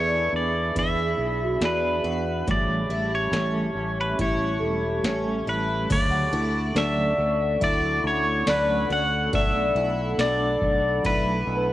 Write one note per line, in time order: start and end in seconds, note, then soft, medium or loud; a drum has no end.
0.00 0.28 E2 medium
0.00 0.33 E3 medium
0.00 0.33 B3 medium
0.00 0.34 D4 medium
0.00 0.76 D4 medium
0.00 0.31 G#4 medium
0.00 2.44 G#4 medium
0.00 0.98 B4 medium
0.00 0.36 C#5 medium
0.00 5.87 E5 medium
0.00 2.44 B5 medium
0.33 0.71 E2 medium
0.33 0.76 D4 soft
0.33 0.76 G#4 soft
0.33 0.78 D5 medium
0.37 0.75 B3 soft
0.75 1.14 E2 medium
0.75 1.18 E3 medium
0.75 1.19 B3 medium
0.75 1.19 D4 medium
0.75 1.62 E4 medium
0.75 kick medium
0.75 closed hi-hat medium
0.79 1.16 G#4 medium
0.79 1.66 E5 medium
1.17 1.56 B1 medium
1.17 1.61 D4 soft
1.17 1.61 G#4 medium
1.22 1.61 B3 soft
1.43 2.72 F#4 medium
1.61 1.99 E2 loud
1.61 2.04 E3 medium
1.61 2.05 B3 medium
1.61 2.05 D4 medium
1.61 2.04 G#4 medium
1.61 snare loud
1.61 closed hi-hat medium
1.65 2.50 B4 medium
2.04 2.42 E2 medium
2.04 2.49 D4 soft
2.04 2.47 F#4 medium
2.04 2.48 G#4 soft
2.08 2.48 B3 soft
2.47 2.85 A1 medium
2.47 2.90 A2 medium
2.47 2.90 C#3 medium
2.47 2.90 E3 medium
2.47 2.91 G3 medium
2.47 2.91 A3 medium
2.47 5.87 G4 medium
2.47 2.88 A4 medium
2.47 5.87 A5 medium
2.47 5.87 C#6 medium
2.47 kick loud
2.47 closed hi-hat medium
2.51 3.15 D5 medium
2.89 3.27 A1 medium
2.89 3.32 A3 soft
2.89 3.32 C#4 soft
2.89 3.33 E4 medium
2.89 3.33 A4 soft
2.93 3.31 G3 soft
3.15 4.00 C#5 medium
3.32 3.70 A1 loud
3.32 3.75 A2 medium
3.32 3.76 E3 medium
3.32 3.76 G3 medium
3.32 3.76 A3 medium
3.32 4.19 C#4 medium
3.32 3.74 C#4 medium
3.32 3.73 A4 medium
3.32 snare loud
3.32 closed hi-hat medium
3.74 4.13 A1 medium
3.74 4.17 G3 soft
3.74 4.18 A3 soft
3.74 4.19 C#4 soft
3.74 4.18 A4 soft
4.01 4.19 B4 medium
4.18 4.57 A1 medium
4.18 4.61 G3 medium
4.18 4.62 A3 medium
4.18 4.62 C#4 medium
4.18 5.05 E4 medium
4.18 4.60 A4 medium
4.18 5.45 C#5 medium
4.18 kick medium
4.18 closed hi-hat medium
4.59 4.99 E1 medium
4.59 5.04 C#4 soft
4.59 5.89 A4 soft
4.59 5.04 A4 soft
4.64 5.04 G3 soft
4.64 5.04 A3 soft
5.04 5.42 A1 loud
5.04 5.47 A2 medium
5.04 5.47 E3 medium
5.04 5.48 G3 medium
5.04 5.48 A3 medium
5.04 5.47 C#4 medium
5.04 5.45 A4 medium
5.04 snare loud
5.04 closed hi-hat medium
5.47 5.85 A1 medium
5.47 5.90 G3 soft
5.47 5.90 A3 soft
5.47 5.91 C#4 soft
5.47 5.90 E4 medium
5.47 5.90 A4 medium
5.47 5.92 B4 medium
5.89 6.28 D2 loud
5.89 6.33 C#3 medium
5.89 6.33 D3 medium
5.89 6.33 F#3 medium
5.89 6.33 A3 medium
5.89 11.73 A4 medium
5.89 6.31 A4 medium
5.89 6.77 D5 medium
5.89 11.73 F#5 medium
5.89 9.31 C#6 medium
5.89 kick loud
5.89 crash medium
5.89 ride medium
6.11 7.39 F#5 medium
6.32 6.71 D2 medium
6.32 6.76 E4 medium
6.32 6.75 A4 soft
6.36 6.75 A3 soft
6.74 7.13 D2 medium
6.74 7.18 D3 medium
6.74 7.19 F#3 medium
6.74 7.19 A3 medium
6.74 7.19 C#4 medium
6.74 7.62 D4 medium
6.74 7.16 A4 medium
6.74 7.64 E5 loud
6.74 snare loud
6.74 ride soft
6.74 tambourine medium
7.18 7.56 D2 loud
7.18 7.62 C#4 soft
7.18 7.61 A4 soft
7.22 7.60 A3 soft
7.60 7.99 D2 medium
7.60 8.04 F#3 medium
7.60 8.04 A3 medium
7.60 8.47 E4 medium
7.60 kick medium
7.60 ride medium
7.64 8.03 A4 medium
7.64 8.07 D5 loud
8.04 8.42 D2 loud
8.04 8.46 A3 soft
8.04 8.47 C#4 medium
8.04 8.47 A4 soft
8.04 8.50 C#5 loud
8.46 8.85 D2 medium
8.46 8.89 D3 medium
8.46 8.90 F#3 medium
8.46 8.90 A3 medium
8.46 8.89 C#4 medium
8.46 8.90 D4 medium
8.46 8.87 A4 medium
8.46 8.93 B4 loud
8.46 snare loud
8.46 ride medium
8.46 tambourine medium
8.89 9.28 D2 medium
8.89 9.32 A3 soft
8.89 9.33 C#4 soft
8.89 9.33 F#4 medium
8.89 9.32 A4 medium
8.89 9.35 F#5 loud
9.31 9.71 B1 loud
9.31 9.75 B2 medium
9.31 9.75 F#3 medium
9.31 9.76 A3 medium
9.31 9.76 D4 medium
9.31 9.74 A4 medium
9.31 10.22 E5 medium
9.31 kick loud
9.31 ride medium
9.37 11.73 B5 medium
9.51 10.79 D5 soft
9.75 10.13 B1 medium
9.75 10.18 A3 soft
9.75 10.18 D4 soft
9.75 10.19 E4 medium
9.75 10.18 A4 medium
10.17 10.56 B1 medium
10.17 10.61 B2 medium
10.17 10.61 F#3 medium
10.17 10.62 A3 medium
10.17 11.05 D4 medium
10.17 10.60 D4 medium
10.17 10.59 A4 medium
10.17 11.08 D5 loud
10.17 snare loud
10.17 ride soft
10.17 tambourine medium
10.60 10.99 B1 loud
10.60 11.03 A3 soft
10.60 11.04 D4 soft
10.60 11.04 A4 soft
10.60 kick medium
11.02 11.42 B1 medium
11.02 11.46 F#3 medium
11.02 11.47 A3 medium
11.02 11.46 D4 medium
11.02 11.73 E4 medium
11.02 11.73 B4 medium
11.02 kick medium
11.02 ride medium
11.06 11.44 A4 medium
11.45 11.73 B1 medium
11.45 11.73 D4 soft
11.45 11.73 A4 medium
11.49 11.73 A3 soft
11.57 11.73 B4 medium